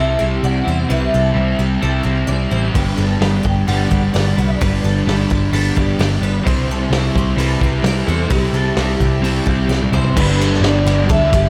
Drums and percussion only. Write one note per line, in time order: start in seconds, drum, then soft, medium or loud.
2.75 kick loud
2.75 open hi-hat medium
3.22 snare loud
3.22 open hi-hat soft
3.45 kick medium
3.68 open hi-hat medium
3.92 kick medium
4.16 snare loud
4.16 open hi-hat medium
4.62 kick loud
4.62 open hi-hat medium
5.09 snare loud
5.09 open hi-hat medium
5.31 kick medium
5.55 open hi-hat medium
5.77 kick medium
6.00 snare loud
6.00 open hi-hat medium
6.12 snare soft
6.46 kick loud
6.46 open hi-hat medium
6.93 snare loud
6.93 open hi-hat medium
7.16 kick medium
7.38 open hi-hat medium
7.61 kick medium
7.84 snare loud
7.84 open hi-hat medium
8.30 kick loud
8.30 open hi-hat medium
8.77 snare loud
8.77 open hi-hat medium
9.00 kick medium
9.24 open hi-hat medium
9.47 kick medium
9.71 snare medium
9.82 high tom medium
9.94 mid tom medium
10.04 floor tom medium
10.17 kick loud
10.17 crash loud
10.41 ride medium
10.53 snare soft
10.64 snare loud
10.64 ride medium
10.87 ride medium
11.10 kick loud
11.10 ride loud
11.33 kick medium
11.33 ride medium